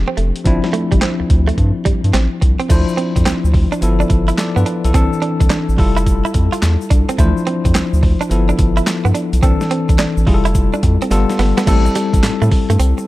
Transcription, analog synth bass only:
0.18 F1
0.46 G1
0.92 G1
1.20 D2
1.30 D2
1.58 G2
1.86 G2
2.04 G2
2.14 A1
2.42 C2
2.70 D2
3.16 F2
3.26 D2
3.44 D2
3.82 G1
4.10 G1
4.57 G2
4.85 B1
4.94 C2
5.41 C2
5.51 A1
5.69 A1
5.79 F1
6.35 F2
6.63 E2
6.91 C2
7.19 D2
7.65 F2
7.75 D2
7.93 D2
8.31 G1
8.59 G1
9.05 G2
9.33 B1
9.43 C2
9.89 C2
9.99 A1
10.17 A1
10.27 F1
10.83 F2
11.11 G1
11.39 G1
11.67 A1
12.14 A1
12.24 A2
12.42 A2
12.70 G2
12.80 C2

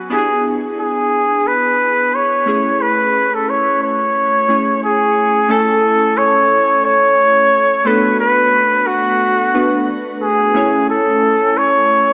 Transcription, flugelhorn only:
0.12 G#4
0.79 G#4
1.47 B4
2.15 C#5
2.82 B4
3.35 A4
3.50 C#5
3.83 C#5
4.84 G#4
5.51 A4
6.18 C#5
6.85 C#5
7.87 B4
8.20 B4
8.87 F#4
10.22 G#4
10.90 A4
11.57 C#5

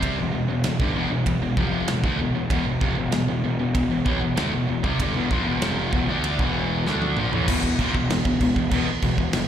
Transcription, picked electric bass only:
Already playing: C2
0.19 E1
0.34 E1
0.48 E1
0.66 E1
0.80 G1
0.95 E1
1.10 E1
1.26 E1
1.41 E1
1.57 F1
1.88 E1
2.04 D2
2.19 E1
2.35 E1
2.50 E1
2.66 E1
2.82 F1
2.97 E1
3.13 E1
3.29 E1
3.44 E1
3.60 E1
3.75 E1
3.91 E1
4.06 B1
4.22 E1
4.38 D2
4.53 E1
4.69 E1
4.84 C2
5.00 G1
5.15 E1
5.31 A#1
5.46 E1
5.61 F1
5.93 E1
6.08 D2
6.39 E1
6.85 D2
7.17 A#1
7.32 A1
7.48 E1
7.64 E1
7.79 A#1
7.95 E1
8.10 E1
8.25 E1
8.41 E1
8.56 E1
8.72 E1
8.86 muted picked electric bass stroke
9.03 E1
9.18 E1
9.34 E1

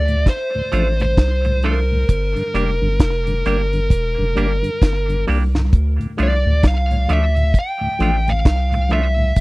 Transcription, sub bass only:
Already playing: D2
0.73 A1
1.18 C2
2.09 G1
2.54 F1
2.81 G1
3.00 F1
3.46 G1
3.90 E1
4.19 F1
4.37 G1
4.81 G1
5.29 C2
5.73 D2
6.19 C2
6.46 D2
6.64 C2
7.09 D2
8.00 A1
8.45 C2
9.37 G1

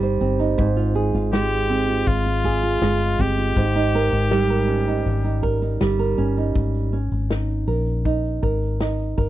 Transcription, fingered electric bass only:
Already playing: G1
0.21 G1
0.59 G#1
1.14 G#1
2.07 G#1
2.82 G1
3.19 G1
3.57 G#1
4.13 G#1
5.06 G#1
5.81 G1
6.18 G1
6.56 G#1
7.12 G#1
7.67 A#1
8.43 G#1
9.18 G1

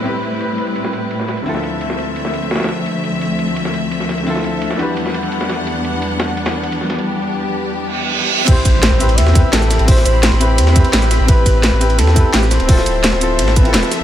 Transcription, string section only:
Already playing: A2 G3 C4 E4 B4
1.46 D2 F3 A3 C4 E5
4.79 E2 G3 B3 D4 F#5
6.90 G4
8.48 C4 G4 B5
12.69 F3 E5

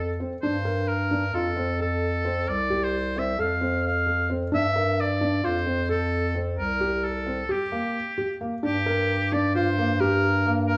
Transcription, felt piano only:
0.20 C4
0.43 D4
0.65 A#4
1.11 D4
1.34 F4
1.57 C4
1.80 A4
2.25 C4
2.70 G4
3.16 C4
3.39 A4
3.61 C4
4.06 A4
4.30 C4
4.52 D4
4.76 A#4
5.21 D4
5.44 F4
5.66 C4
5.89 A4
6.35 C4
6.81 G4
7.27 C4
7.49 G4
7.72 A#3
8.18 G4
8.41 A#3
8.63 D4
8.86 A#4
9.32 D4
9.55 F4
9.78 A#3
10.00 G4
10.46 A#3

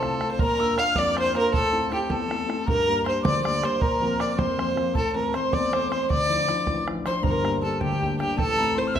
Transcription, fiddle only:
Already playing: A4
0.31 C5
0.39 A#4
0.78 F5
0.98 D5
1.19 C5
1.38 A#4
1.54 A4
1.94 G4
2.12 A4
2.69 A#4
3.08 C5
3.26 D5
3.46 D5
3.65 C5
3.81 A#4
4.21 D5
4.38 C5
4.97 A4
5.16 A#4
5.35 C5
5.54 D5
5.73 C5
5.92 C5
6.10 D5
7.07 C5
7.27 A#4
7.64 A4
7.83 G4
8.20 G4
8.40 A4
8.78 C5
8.95 E5

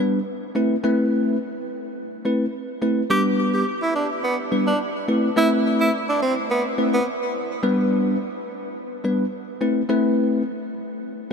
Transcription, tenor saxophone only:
3.11 G4
3.54 G4
3.82 E4
3.95 D4
4.24 B3
4.67 D4
5.37 E4
5.80 E4
6.09 D4
6.22 C4
6.50 B3
6.94 B3

